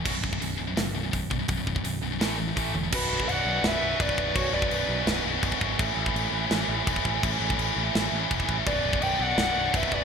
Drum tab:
CC |x---------------|----------------|x---x---x---x---|x---x---x---x---|
HH |----o---o---o---|o---o---o---o---|----------------|----------------|
SD |--------o-------|--------o-------|--------o-------|--------o-------|
T1 |----------------|--------------o-|----------------|----------------|
BD |o-oo--------o-o-|o-oo--------o---|o--o--------ooo-|o--o--------ooo-|

CC |x---x---x---x---|x---x---x---x---|x---x---x---x---|
HH |----------------|----------------|----------------|
SD |--------o-------|--------o-------|--------o-------|
T1 |----------------|----------------|----------------|
BD |o--o--------ooo-|o--o--------ooo-|o--o--------ooo-|